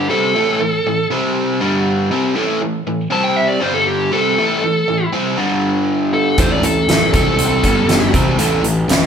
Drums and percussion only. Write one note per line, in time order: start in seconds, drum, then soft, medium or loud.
6.38 kick loud
6.38 closed hi-hat medium
6.63 closed hi-hat medium
6.89 snare loud
6.89 closed hi-hat medium
7.14 kick loud
7.14 closed hi-hat medium
7.39 closed hi-hat medium
7.64 kick medium
7.64 closed hi-hat medium
7.89 snare loud
7.89 closed hi-hat medium
8.14 kick medium
8.14 closed hi-hat medium
8.39 closed hi-hat medium
8.64 closed hi-hat medium
8.89 snare loud
8.89 closed hi-hat medium